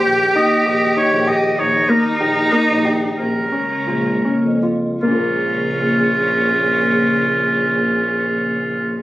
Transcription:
X:1
M:5/8
L:1/16
Q:1/4=82
K:Bbdor
V:1 name="Oboe"
g2 e2 e2 d2 e2 | d2 B4 e2 z2 | B8 z2 | F8- F2- |
F8- F2 |]
V:2 name="Grand piano"
G2 E2 G2 E2 G2 | z2 B,2 G2 B,2 G2- | G2 D2 F2 D2 F2 | [B,DFB]8- [B,DFB]2- |
[B,DFB]8- [B,DFB]2 |]
V:3 name="Cello"
G8- G2 | E8- E2 | D8 z2 | D8- D2- |
D8- D2 |]
V:4 name="Ambient pad"
[E,B,G]8- [E,B,G]2- | [E,B,G]8- [E,B,G]2 | [D,A,B,]8- [D,A,B,]2 | [D,B,A]8- [D,B,A]2- |
[D,B,A]8- [D,B,A]2 |]
V:5 name="Tuba" clef=bass
B,,,2 z2 B,,,2 z B,,,3 | B,,,2 z2 B,,,2 z B,,,3 | B,,,2 z2 B,,,2 z F,,3 | B,,,8- B,,,2- |
B,,,8- B,,,2 |]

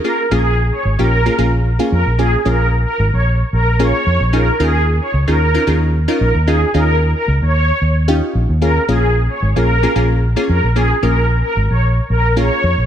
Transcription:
X:1
M:4/4
L:1/16
Q:1/4=112
K:Bbm
V:1 name="Supersaw synth"
B2 A2 z d z B3 z4 B z | A2 B2 z B z d z2 B2 d3 z | B2 A2 z d z B3 z4 B z | A2 B2 z B z d3 z6 |
B2 A2 z d z B3 z4 B z | A2 B2 z B z d z2 B2 d3 z |]
V:2 name="Synth stab"
[B,DFA]2 [B,DFA]4 z [B,DF=G]2 [B,DFA] [B,DFA]2 z [B,DFA]2 z | [B,DFA]2 [B,DFA]6 z4 [B,DFA]3 z | [DEFA]2 [DEFB]4 z [DEFA]2 [DEFB] [DEFA]2 z [DEFB]2 z | [DEFA]2 [DEFA]6 z4 [DEF=G]3 z |
[B,DFA]2 [B,DFA]4 z [B,DFA]2 [B,DFA] [B,DFA]2 z [B,DFA]2 z | [B,DFA]2 [B,DFB]6 z4 [B,DFA]3 z |]
V:3 name="Fingered electric bass" clef=bass
z2 B,,,4 A,,, B,,,3 B,,,4 F,, B,,,- | B,,,2 B,,,4 A,,, B,,,3 B,,,4 F,, B,,,- | B,,,2 E,,4 D,, E,,3 E,,4 B,,, E,,- | E,,2 E,,4 D,, E,,3 E,,4 B,,, E,,- |
E,,2 B,,,4 A,,, B,,,3 B,,,4 F,, B,,,- | B,,,2 B,,,4 A,,, B,,,3 B,,,4 F,, B,,, |]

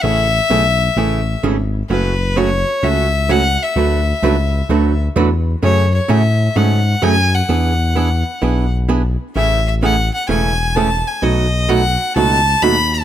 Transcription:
X:1
M:4/4
L:1/8
Q:"Swing" 1/4=129
K:A
V:1 name="Fiddle"
e6 z2 | B2 c2 e2 f e- | e4- e z3 | c c e2 f2 g f- |
f4- f z3 | e e f f g2 a g | ^d2 f2 a2 b a |]
V:2 name="Hollow-body jazz guitar"
[C,E,A,CG] z [C,E,A,CG] z [C,E,A,CG] z [C,E,A,CG] z | [C,F,A,CF] z [C,F,A,CF] z [C,F,A,CF] z [C,F,A,CF] z | [D,F,A,DFB] z [D,F,A,DFB] z [D,F,A,DFB] z [D,F,A,DFB] z | [C,F,A,CG] z [C,F,A,CG] z [C,F,A,CG] z [C,F,A,CG] z |
[E,B,DG] z [E,B,DG] z [E,B,DG] z [E,B,DG] z | [C,E,A,CG] z [C,E,A,CG] z [C,E,A,CG] z [C,E,A,CG] z | [B,,F,A,^DF] z [B,,F,A,DF] z [B,,F,A,DF] z [B,,F,A,DF] z |]
V:3 name="Analog synth bass" clef=bass
A,,,2 B,,,2 A,,,2 G,,,2 | F,,,4 C,,4 | D,,2 C,,2 D,,2 E,,2 | F,,2 A,,2 G,,2 F,,2 |
E,,4 B,,,4 | A,,,4 E,,,4 | B,,,4 C,,2 ^D,,2 |]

